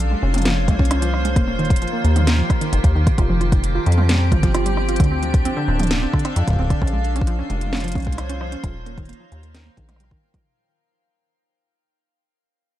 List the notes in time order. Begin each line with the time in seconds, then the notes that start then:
Already playing: A#1 A#3 F4 F5
0.11 G#3
0.20 F1 C#4 C#5
0.34 C#4 C5, closed hi-hat, mid tom
0.38 closed hi-hat
0.42 F3, snare, closed hi-hat
0.45 closed hi-hat
0.68 C2 G#3, kick, closed hi-hat, mid tom
0.70 mid tom
0.73 mid tom
0.75 mid tom
0.77 C#4, kick, mid tom
0.85 closed hi-hat
0.91 C#4, cross-stick, closed hi-hat
1.02 F3, closed hi-hat
1.14 cross-stick
1.25 G#3, closed hi-hat
1.36 D#1 D#3 A#3, kick, cross-stick, closed hi-hat
1.48 A#3
1.59 D#3, closed hi-hat
1.65 closed hi-hat
1.70 kick, closed hi-hat
1.76 closed hi-hat
1.82 F3, closed hi-hat
1.88 closed hi-hat
1.93 A#3
2.04 D#2 A#3, closed hi-hat
2.16 D#3 G4, closed hi-hat, mid tom
2.27 snare, closed hi-hat
2.39 F3
2.50 kick, cross-stick, closed hi-hat
2.61 D#3, closed hi-hat
2.73 G1 D#3, closed hi-hat
2.84 D#2, kick, closed hi-hat
2.95 D#3
3.07 kick, cross-stick, closed hi-hat
3.18 F1 F3 F4, kick, closed hi-hat
3.30 F3
3.41 F4, closed hi-hat
3.52 G3 G5, kick, closed hi-hat
3.64 closed hi-hat
3.75 F4
3.82 C4
3.86 F2 F3, closed hi-hat
3.92 closed hi-hat
3.98 F4, mid tom
4.09 G3, snare, closed hi-hat
4.32 G1 F4, kick, closed hi-hat, mid tom
4.43 F3, kick, closed hi-hat
4.54 F4, cross-stick, closed hi-hat
4.66 G3, closed hi-hat
4.77 cross-stick
4.89 F4, closed hi-hat
4.96 D2, kick, cross-stick, closed hi-hat
5.00 D3 D4, closed hi-hat
5.04 closed hi-hat
5.11 C4
5.23 F3, closed hi-hat
5.34 kick, closed hi-hat
5.45 C4, closed hi-hat
5.57 D3
5.61 A4 F5
5.68 D1 C4
5.79 F3 D5, closed hi-hat, mid tom
5.83 closed hi-hat
5.87 snare, closed hi-hat
5.91 closed hi-hat
6.02 C4
6.13 D3, kick, cross-stick
6.19 closed hi-hat
6.25 C4, cross-stick, closed hi-hat
6.36 F2 F3, closed hi-hat
6.48 D1, kick, closed hi-hat
6.50 kick
6.53 kick
6.56 kick
6.59 C4, kick
6.62 kick
6.65 kick
6.67 kick
6.70 D3, kick, cross-stick, closed hi-hat
6.82 A#1 A#3 C#4, kick
6.87 closed hi-hat
6.93 G#3
7.04 closed hi-hat
7.10 F4
7.16 C#4, closed hi-hat
7.21 kick
7.27 F3, closed hi-hat
7.39 C#4
7.50 F1 G#3, closed hi-hat
7.61 C5 C#5, closed hi-hat, mid tom
7.67 mid tom
7.73 C#4, snare, closed hi-hat, mid tom
7.76 closed hi-hat, mid tom
7.80 F3, closed hi-hat
7.84 closed hi-hat
7.88 closed hi-hat
7.92 C2, kick, closed hi-hat
7.95 C#4, closed hi-hat, mid tom
7.98 closed hi-hat
8.00 closed hi-hat
8.02 closed hi-hat
8.05 G#3, kick, closed hi-hat
8.12 closed hi-hat
8.18 cross-stick, closed hi-hat
8.29 C#4, closed hi-hat
8.41 F3, cross-stick
8.52 C#4, closed hi-hat
8.64 D#1 F3 D#4, kick, cross-stick, closed hi-hat
8.86 A#3, closed hi-hat
8.98 D#3, kick, closed hi-hat
9.05 A#3, closed hi-hat
9.09 closed hi-hat
9.13 closed hi-hat
9.20 F3
9.26 A#4
9.32 D#2, closed hi-hat
9.43 A#3 F5 G5, closed hi-hat
9.54 D#3, snare, closed hi-hat
9.66 A#3
9.77 A#1 D#3, kick, closed hi-hat
9.89 cross-stick, closed hi-hat, mid tom
9.96 G3, cross-stick, closed hi-hat
10.04 cross-stick
10.11 D#3, kick, cross-stick
10.34 F3, kick, cross-stick, closed hi-hat, mid tom